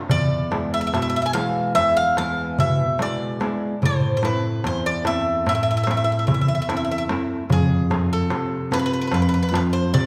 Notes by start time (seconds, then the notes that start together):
0.09 E2 D5, darbuka dum
0.51 G#3 B3 E4, darbuka tek
0.74 E5
0.81 E5
0.87 E5
0.93 B2 E5, darbuka tek
1.02 E5
1.10 E5
1.16 E5
1.22 E5 G#5
1.33 E3 G#3 B3 F5, darbuka tek
1.75 E2 E5, darbuka tek
1.97 F5
2.17 E3 G#3 B3 F5, darbuka tek
2.58 B2 E5, darbuka dum
2.98 G#3 B3 E4 D5, darbuka tek
3.40 G#3 B3 E4, darbuka tek
3.82 A2 C5, darbuka dum
4.17 C5
4.22 A3 C4 E4 B4, darbuka tek
4.64 E2 C5, darbuka tek
4.86 D5
5.05 A3 C4 E4 E5, darbuka tek
5.46 A2 E5, darbuka tek
5.55 E5
5.63 E5
5.71 E5
5.77 E5
5.83 A3 E5, darbuka tek
5.88 C4 E4 E5
5.97 E5
6.04 E5
6.12 E5
6.19 E5
6.27 E2 E5, darbuka dum
6.34 E5
6.41 E5
6.48 E5
6.55 E5
6.62 E5
6.69 A3 C4 E4 E5, darbuka tek
6.77 E5
6.85 E5
6.91 E5
6.98 E5
7.09 A3 C4 E4, darbuka tek
7.50 F2 G#4, darbuka dum
7.90 A3 C4 F4, darbuka tek
8.13 A4
8.30 C3, darbuka tek
8.71 A3 C4 F4 B4, darbuka tek
8.79 B4
8.86 B4
8.93 B4
9.01 B4
9.07 B4
9.12 F2 B4, darbuka tek
9.22 B4
9.29 B4
9.34 B4
9.43 B4
9.49 A3 C4 F4 B4
9.54 B4, darbuka tek
9.73 C5
9.93 C3 D5, darbuka dum